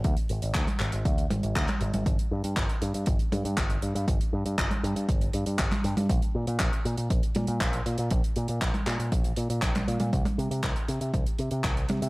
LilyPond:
<<
  \new Staff \with { instrumentName = "Picked electric bass" } { \clef bass \time 4/4 \key bes \mixolydian \tempo 4 = 119 d,16 r16 aes,,16 aes,,16 d,16 r16 aes,,16 aes,,16 d,8 aes,,16 aes,,16 d,16 r16 aes,,16 aes,,16 | g,,16 r16 g,16 g,16 g,,16 r16 g,16 g,16 g,,16 r16 g,16 g,16 g,,8 g,16 g,16 | g,,16 r16 g,16 g,16 g,,16 r16 g,16 g,16 g,,8 g,16 g,16 g,,16 r16 g,16 g,16 | bes,,16 r16 bes,16 bes,16 bes,,16 r16 bes,16 bes,16 bes,,16 r16 bes,16 bes,16 bes,,8 bes,16 bes,16 |
bes,,16 r16 bes,16 bes,16 bes,,16 r16 bes,16 bes,16 bes,,8 bes,16 bes,16 bes,,8 bes,16 bes,16 | c,16 r16 c16 c16 c,16 r16 c16 c16 c,16 r16 c16 c16 c,8 c16 c16 | }
  \new DrumStaff \with { instrumentName = "Drums" } \drummode { \time 4/4 <hh bd>16 hh16 hh16 hh16 <hc hh bd>16 <hh tommh>16 <hc hh>16 hh16 <hh bd>16 hh16 <hh tommh>16 hh16 <hc hh bd>16 <hc hh tommh>16 hh16 <hh tommh>16 | <hh bd>16 hh8 hh16 <hc hh bd>16 hh16 hh16 hh16 <hh bd>16 hh16 <hh tommh>16 hh16 <hc hh bd>16 hh16 hh16 hh16 | <hh bd>16 hh8 hh16 <hc hh bd>16 <hh tommh>16 hh16 hh16 <hh bd>16 hh16 hh16 hh16 <hc hh bd>16 <hc hh tommh>16 hh16 <hh tommh>16 | <hh bd>16 hh8 hh16 <hc hh bd>16 hh16 hh16 hh16 <hh bd>16 hh16 <hh tommh>16 hh16 <hc hh bd>16 hh16 hh16 hh16 |
<hh bd>16 hh16 hh16 hh16 <hc hh bd>16 <hh tommh>16 <hc hh>16 hh16 <hh bd>16 hh16 hh16 hh16 <hc hh bd>16 <hc hh tommh>16 hh16 <hh tommh>16 | <hh bd>16 <hh tommh>16 hh16 hh16 <hc hh bd>16 hh16 hh16 hh16 <hh bd>16 hh16 hh16 hh16 <hc hh bd>16 hh16 <hh tommh>16 hh16 | }
>>